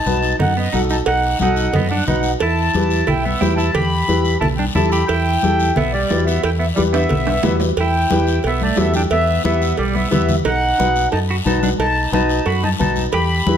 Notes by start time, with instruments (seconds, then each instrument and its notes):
Already playing: clean electric guitar D#4, accordion A5
0.06 fingered electric bass B1, upright piano D#4 F#4 B4, high conga, short guiro
0.23 short guiro
0.39 fingered electric bass F#2, clean electric guitar D#4, accordion F#5, cowbell, low conga, long guiro
0.57 clean electric guitar B3, accordion D#5
0.73 fingered electric bass B1, clean electric guitar D#4, upright piano D#4 F#4 A4, accordion F#5, high conga, short guiro
0.89 clean electric guitar D#4, accordion A5, short guiro
1.06 fingered electric bass B1, clean electric guitar D#4, accordion F#5, cowbell, long guiro
1.39 fingered electric bass B1, upright piano D#4 F#4 A4, clean electric guitar D#4, accordion F#5, high conga, short guiro
1.56 short guiro
1.72 fingered electric bass F#2, clean electric guitar B3, accordion D#5, cowbell, low conga, long guiro
1.89 clean electric guitar D4, accordion F#5, high conga
2.06 fingered electric bass B1, upright piano D#4 F#4 B4, clean electric guitar D#4, accordion F#5, high conga, low conga, short guiro
2.23 short guiro
2.40 fingered electric bass E2, clean electric guitar E4, accordion A5, cowbell, long guiro
2.74 fingered electric bass E2, upright piano E4 G4 B4, high conga, short guiro
2.90 short guiro
3.07 fingered electric bass B1, clean electric guitar E4, accordion G5, cowbell, low conga, long guiro
3.24 clean electric guitar B3, accordion E5, high conga
3.40 fingered electric bass E2, clean electric guitar E4, upright piano E4 G4 B4, accordion G5, high conga, low timbale, short guiro
3.56 clean electric guitar E4, accordion A5, short guiro
3.74 fingered electric bass E2, clean electric guitar G4, accordion B5, cowbell, low conga, long guiro
4.08 fingered electric bass E2, upright piano E4 G4 B4, high conga, short guiro
4.25 short guiro
4.41 fingered electric bass B1, clean electric guitar E4, accordion A5, cowbell, low conga, long guiro
4.57 clean electric guitar D4, accordion G5, high conga
4.75 fingered electric bass E2, clean electric guitar E4, upright piano E4 G4 A4, accordion A5, high conga, low conga, short guiro
4.91 clean electric guitar G4, accordion B5, short guiro
5.06 fingered electric bass E2, clean electric guitar E4, accordion G5, cowbell, long guiro
5.42 fingered electric bass E2, upright piano E4 G4 A4, high conga, short guiro
5.60 short guiro
5.76 fingered electric bass B1, clean electric guitar B3, accordion E5, cowbell, low conga, long guiro
5.92 clean electric guitar G3, accordion D5
6.10 fingered electric bass E2, upright piano E4 G4 B4, high conga, low timbale, short guiro
6.26 clean electric guitar B3, accordion E5, short guiro
6.43 fingered electric bass E2, clean electric guitar E4, accordion G5, cowbell, long guiro
6.59 clean electric guitar B3, accordion E5
6.75 fingered electric bass E2, clean electric guitar G3, upright piano E4 G4 B4, accordion D5, high conga, short guiro
6.93 clean electric guitar B3, accordion E5, high timbale, short guiro
7.09 fingered electric bass B1, cowbell, low conga, long guiro
7.27 high conga, high timbale
7.43 fingered electric bass E2, upright piano E4 G4 B4 E5, high conga, low conga, low timbale, short guiro
7.60 low timbale, short guiro
7.77 fingered electric bass E2, clean electric guitar E4, accordion G5, cowbell, high conga, long guiro
8.10 fingered electric bass E2, upright piano E4 G4 B4, high conga, short guiro
8.27 short guiro
8.43 fingered electric bass B1, accordion E5, cowbell, long guiro
8.47 clean electric guitar B3
8.61 clean electric guitar A3, accordion D5, high conga
8.76 fingered electric bass E2, upright piano E4 G4 A4, accordion E5, high conga, low timbale, short guiro
8.81 clean electric guitar B3
8.94 clean electric guitar D4, accordion G5, high conga, short guiro
9.10 fingered electric bass E2, clean electric guitar B3, accordion E5, cowbell, high conga, long guiro
9.44 fingered electric bass E2, clean electric guitar B3, upright piano E4 G4 B4, accordion E5, high conga, short guiro
9.62 short guiro
9.77 fingered electric bass B1, clean electric guitar G3, accordion D5, cowbell, high conga, long guiro
9.95 clean electric guitar B3, accordion E5, high conga
10.11 fingered electric bass E2, clean electric guitar B3, upright piano E4 G4 B4, accordion E5, high conga, low conga, short guiro
10.29 high conga, low conga, short guiro
10.45 fingered electric bass B1, clean electric guitar D#4, accordion F#5, cowbell, high conga, long guiro
10.78 fingered electric bass B1, upright piano D#4 F#4 B4, high conga, short guiro
10.96 short guiro
11.12 fingered electric bass F#2, clean electric guitar D#4, accordion A5, cowbell, high conga, long guiro
11.28 clean electric guitar F#4, accordion B5
11.45 fingered electric bass B1, upright piano D#4 F#4 B4, clean electric guitar D#4, accordion A5, high conga, short guiro
11.62 clean electric guitar D4, accordion F#5, high conga, short guiro
11.79 fingered electric bass B1, clean electric guitar D#4, accordion A5, cowbell, high conga, long guiro
12.12 fingered electric bass B1, upright piano D#4 F#4 B4, clean electric guitar D#4, accordion A5, high conga, short guiro
12.30 short guiro
12.46 fingered electric bass F#2, clean electric guitar F#4, accordion B5, cowbell, high conga, long guiro
12.64 clean electric guitar D#4, accordion A5, high conga
12.79 fingered electric bass B1, upright piano D#4 F#4 B4, clean electric guitar D#4, accordion A5, high conga, low conga, short guiro
12.96 high conga, short guiro
13.12 fingered electric bass E2, clean electric guitar G4, accordion B5, cowbell, high conga, long guiro
13.46 fingered electric bass E2, upright piano E4 G4 B4, high conga, short guiro